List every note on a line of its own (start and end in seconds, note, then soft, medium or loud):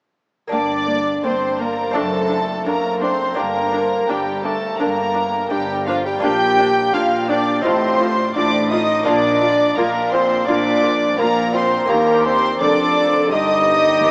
0.47 1.15 G1 medium
0.47 1.89 A#3 medium
0.47 1.90 D4 medium
0.47 1.91 G4 soft
0.47 1.20 D6 loud
0.52 1.15 G2 medium
0.52 1.13 G2 medium
0.52 0.60 A#3 medium
0.52 1.26 D4 medium
0.52 1.20 D5 medium
0.87 0.95 A#3 medium
1.23 1.87 G1 medium
1.23 1.84 G2 medium
1.23 1.87 G2 medium
1.23 1.31 A#3 medium
1.23 1.60 C4 medium
1.23 1.59 C5 medium
1.23 1.59 C6 medium
1.58 1.67 A#3 medium
1.58 1.95 A#3 medium
1.58 1.95 A#4 medium
1.58 1.95 A#5 loud
1.91 2.58 F#1 medium
1.91 3.32 C4 medium
1.91 3.33 D4 medium
1.91 2.02 D4 medium
1.91 3.33 A4 medium
1.91 2.66 A5 loud
1.95 2.55 F#2 medium
1.95 2.58 F#2 medium
1.95 2.69 A3 medium
1.95 2.65 A4 medium
2.29 2.37 D4 medium
2.65 3.29 F#1 medium
2.65 3.27 F#2 medium
2.65 3.29 F#2 medium
2.65 3.03 A#3 medium
2.65 2.74 D4 medium
2.65 3.02 A#4 medium
2.65 3.01 A#5 loud
3.01 3.39 C4 medium
3.01 3.09 D4 medium
3.01 3.37 C5 medium
3.01 3.37 C6 loud
3.34 4.00 G1 medium
3.34 6.17 A#3 medium
3.34 6.18 D4 medium
3.34 3.44 D4 medium
3.34 6.19 G4 medium
3.34 4.09 A#4 medium
3.34 4.09 A#5 loud
3.38 4.01 G2 medium
3.38 3.98 G2 medium
3.38 4.12 A#3 medium
3.72 3.80 D4 medium
4.08 4.72 G1 medium
4.08 4.72 G2 medium
4.08 4.69 G2 medium
4.08 4.44 G3 medium
4.08 4.17 D4 medium
4.08 4.45 G4 medium
4.08 4.44 G5 medium
4.44 4.80 A3 medium
4.44 4.52 D4 medium
4.44 4.80 A4 medium
4.44 4.79 A5 loud
4.78 5.42 G1 medium
4.78 5.40 G2 medium
4.78 5.42 G2 medium
4.78 5.53 A#3 medium
4.78 4.86 D4 medium
4.78 5.49 A#4 medium
4.78 5.50 A#5 loud
5.14 5.22 D4 medium
5.50 6.15 G1 medium
5.50 6.12 G2 medium
5.50 6.15 G2 medium
5.50 5.88 G3 medium
5.50 5.58 D4 medium
5.50 5.87 G4 medium
5.50 5.86 G5 loud
5.86 6.06 F3 medium
5.86 5.95 D4 medium
5.86 6.05 F4 medium
5.86 6.04 F5 medium
6.05 6.23 G3 medium
6.05 6.12 G4 medium
6.05 6.23 G5 loud
6.19 6.86 A#1 medium
6.19 7.59 A#3 medium
6.19 7.59 D4 medium
6.19 7.60 F4 medium
6.19 6.93 G6 loud
6.23 6.86 A#2 medium
6.23 6.83 A#2 medium
6.23 6.31 D4 medium
6.23 6.95 G4 loud
6.23 6.93 G5 loud
6.59 6.67 D4 medium
6.94 7.57 A#1 medium
6.94 7.57 A#2 medium
6.94 7.54 A#2 medium
6.94 7.02 D4 medium
6.94 7.28 F4 medium
6.94 7.30 F5 medium
6.94 7.29 F6 medium
7.28 7.63 D4 loud
7.28 7.37 D4 medium
7.28 7.64 D5 medium
7.28 7.64 D6 loud
7.61 8.27 A1 medium
7.61 9.01 C4 medium
7.61 8.10 C4 loud
7.61 9.02 D#4 medium
7.61 9.02 F4 medium
7.61 8.35 C5 medium
7.61 8.34 C6 loud
7.65 8.28 A2 loud
7.65 8.25 A2 medium
7.65 7.74 F4 medium
8.01 8.09 F4 medium
8.35 8.98 A1 medium
8.35 8.96 A2 medium
8.35 8.99 A2 medium
8.35 8.73 D4 medium
8.35 8.44 F4 medium
8.35 8.71 D5 medium
8.35 8.70 D6 loud
8.70 9.05 D#4 medium
8.70 8.79 F4 medium
8.70 9.06 D#5 loud
8.70 9.05 D#6 loud
9.03 9.69 A#1 loud
9.03 9.69 A#2 medium
9.03 11.84 A#3 medium
9.03 11.84 D4 medium
9.03 9.75 D4 loud
9.03 9.14 F4 medium
9.03 11.85 F4 medium
9.03 9.77 D5 loud
9.03 9.75 D6 loud
9.08 9.67 A#2 medium
9.41 9.49 F4 medium
9.76 10.40 A#1 medium
9.76 10.40 A#2 medium
9.76 10.37 A#2 medium
9.76 10.14 A#3 loud
9.76 9.85 F4 medium
9.76 10.12 A#4 loud
9.76 10.12 A#5 loud
10.11 10.47 C4 loud
10.11 10.21 F4 medium
10.11 10.48 C5 loud
10.11 10.47 C6 loud
10.46 11.10 A#1 medium
10.46 11.10 A#2 loud
10.46 11.08 A#2 medium
10.46 11.19 D4 loud
10.46 10.56 F4 medium
10.46 11.18 D5 medium
10.46 11.17 D6 loud
10.83 10.91 F4 medium
11.18 11.81 A#1 loud
11.18 11.81 A#2 loud
11.18 11.78 A#2 medium
11.18 11.55 A#3 medium
11.18 11.27 F4 medium
11.18 11.54 A#4 loud
11.18 11.53 A#5 loud
11.53 11.89 C4 loud
11.53 11.62 F4 medium
11.53 11.89 C5 medium
11.53 11.89 C6 loud
11.86 12.56 D#2 medium
11.86 12.56 A#3 medium
11.86 12.24 A#3 loud
11.86 14.11 G4 medium
11.86 12.56 G4 medium
11.86 12.24 A#4 medium
11.86 12.24 A#5 loud
11.90 12.57 D#2 medium
12.24 12.63 C4 loud
12.24 12.60 C5 loud
12.24 12.59 C6 loud
12.60 13.30 F1 medium
12.60 13.30 F2 medium
12.60 13.28 F2 medium
12.60 13.32 D4 loud
12.60 13.31 A4 medium
12.60 13.30 D5 loud
12.60 13.30 D6 loud
13.31 14.02 G1 medium
13.31 13.98 G2 medium
13.31 14.02 G2 loud
13.31 14.11 D#4 loud
13.31 14.11 G4 loud
13.31 14.11 D#5 loud
13.31 14.11 D#6 loud
14.03 14.11 D#2 loud
14.03 14.11 D#2 medium
14.03 14.11 D#2 loud